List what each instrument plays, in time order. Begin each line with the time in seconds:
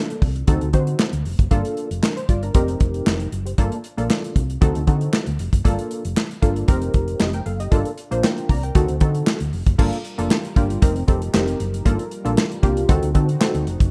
Already playing: analog polysynth A#3 D4 F4 A4
0.10 closed hi-hat
0.22 fingered electric bass C2, kick, open hi-hat
0.36 closed hi-hat
0.47 fingered electric bass D2, analog polysynth C4 D#4 F#4 A4, kick, closed hi-hat
0.61 fingered electric bass D2, closed hi-hat
0.73 fingered electric bass D3, analog polysynth C4 D#4 F#4 C5, kick, closed hi-hat
0.87 closed hi-hat
0.99 snare, clap
1.13 fingered electric bass D2, closed hi-hat
1.25 fingered electric bass F1, open hi-hat
1.39 fingered electric bass F#1, kick, closed hi-hat
1.51 fingered electric bass G1, analog polysynth A#3 D4 F4 A4, kick, closed hi-hat
1.65 closed hi-hat
1.77 closed hi-hat
1.91 fingered electric bass F1, closed hi-hat
2.03 analog polysynth D4 A#4, snare, clap
2.17 analog polysynth C5, closed hi-hat
2.29 fingered electric bass G1, analog polysynth F4 D5, kick, closed hi-hat
2.43 analog polysynth D4 A#4, closed hi-hat
2.54 fingered electric bass F1, analog polysynth C4 D#4 G4 A#4, kick, closed hi-hat
2.68 closed hi-hat
2.80 fingered electric bass F1, kick, closed hi-hat
2.94 closed hi-hat
3.06 fingered electric bass F1, snare, clap
3.20 closed hi-hat
3.32 fingered electric bass F#1, closed hi-hat
3.46 analog polysynth G4 C5, closed hi-hat
3.58 fingered electric bass G1, analog polysynth A#3 D4 F4 A4, kick, closed hi-hat
3.72 closed hi-hat
3.84 closed hi-hat
3.97 fingered electric bass A#1, analog polysynth A#3 D4 F4 A4, closed hi-hat
4.10 snare, clap
4.24 closed hi-hat
4.36 fingered electric bass C2, kick, closed hi-hat
4.50 closed hi-hat
4.61 fingered electric bass D2, analog polysynth C4 D#4 F#4 A4, kick, closed hi-hat
4.75 fingered electric bass D2, closed hi-hat
4.87 fingered electric bass D3, analog polysynth C4 D#4 F#4 A4, kick, closed hi-hat
5.01 closed hi-hat
5.13 snare, clap
5.27 fingered electric bass D2, closed hi-hat
5.39 fingered electric bass F1, closed hi-hat
5.53 fingered electric bass F#1, kick, closed hi-hat
5.65 fingered electric bass G1, analog polysynth A#3 D4 F4 A4, kick, closed hi-hat
5.79 closed hi-hat
5.91 closed hi-hat
6.05 fingered electric bass F1, closed hi-hat
6.17 snare, clap
6.31 closed hi-hat
6.42 fingered electric bass G1, analog polysynth A#3 D4 F4 A4, kick, closed hi-hat
6.56 closed hi-hat
6.68 fingered electric bass F1, analog polysynth C4 D#4 G4 A#4, kick, closed hi-hat
6.82 closed hi-hat
6.94 fingered electric bass F1, kick, closed hi-hat
7.08 closed hi-hat
7.20 fingered electric bass F1, analog polysynth G4 D#5, snare, clap
7.33 analog polysynth A#4 G5, closed hi-hat
7.46 fingered electric bass F#1, analog polysynth A4 F5, closed hi-hat
7.60 analog polysynth G4 D#5, closed hi-hat
7.71 fingered electric bass G1, analog polysynth A#3 D4 F4 A4, kick, closed hi-hat
7.85 closed hi-hat
7.98 closed hi-hat
8.11 fingered electric bass A#1, analog polysynth A#3 D4 F4 C5, closed hi-hat
8.24 analog polysynth A#4 G5, snare, clap
8.38 closed hi-hat
8.49 fingered electric bass C2, analog polysynth D5 A#5, kick, open hi-hat
8.63 analog polysynth A#4 G5, closed hi-hat
8.75 fingered electric bass D2, analog polysynth C4 D#4 F#4 A4, kick, closed hi-hat
8.88 fingered electric bass D2, closed hi-hat
9.00 fingered electric bass D3, analog polysynth C4 D#4 F#4 A4, kick, closed hi-hat
9.15 closed hi-hat
9.27 snare, clap
9.40 fingered electric bass D2, closed hi-hat
9.53 fingered electric bass F1, open hi-hat
9.67 fingered electric bass F#1, kick, closed hi-hat
9.78 fingered electric bass G1, analog synth pad G3 F4 A#4, analog polysynth A#3 D4 F4 A4, kick, crash
9.93 closed hi-hat
10.05 closed hi-hat
10.18 fingered electric bass F1, analog polysynth A#3 D4 F4 A4, closed hi-hat
10.31 snare, clap
10.45 closed hi-hat
10.56 fingered electric bass G1, analog polysynth A#3 D4 F4 G4, kick, closed hi-hat
10.70 closed hi-hat
10.82 fingered electric bass F1, analog synth pad F3 D#4 G4 A#4, analog polysynth C4 D#4 G4 A#4, kick, closed hi-hat
10.96 closed hi-hat
11.08 fingered electric bass F1, analog polysynth C4 D#4 G4 A4, kick, closed hi-hat
11.22 closed hi-hat
11.33 fingered electric bass F1, analog polysynth C4 D#4 G4 A#4, snare, clap
11.47 closed hi-hat
11.60 fingered electric bass F#1, closed hi-hat
11.74 closed hi-hat
11.85 fingered electric bass G1, analog synth pad G3 F4, analog polysynth A#3 D4 F4 A4, kick, closed hi-hat
11.99 closed hi-hat
12.11 closed hi-hat
12.25 fingered electric bass A#1, analog polysynth A#3 D4 F4 A4, closed hi-hat
12.38 snare, clap
12.51 closed hi-hat
12.63 fingered electric bass C2, analog polysynth A#3 D4 F4 G4, kick, closed hi-hat
12.77 closed hi-hat
12.89 fingered electric bass D2, analog synth pad D3 C4 D#4 F#4, analog polysynth C4 D#4 F#4 A4, kick, closed hi-hat
13.03 fingered electric bass D2, closed hi-hat
13.14 fingered electric bass D3, analog polysynth C4 D#4 F#4 A4, kick, closed hi-hat
13.29 closed hi-hat
13.41 analog polysynth C4 D#4 F#4 A4, snare, clap
13.55 fingered electric bass D2, closed hi-hat
13.67 fingered electric bass F1, closed hi-hat
13.80 fingered electric bass F#1, kick, closed hi-hat